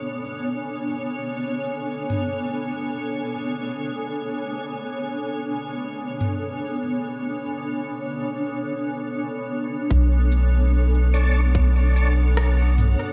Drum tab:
SH |--------|--------|--------|-x-x-x-x|
SD |--------|--------|--------|------r-|
T2 |-----o--|-------o|--------|-------o|
BD |--------|--------|--------|o---o---|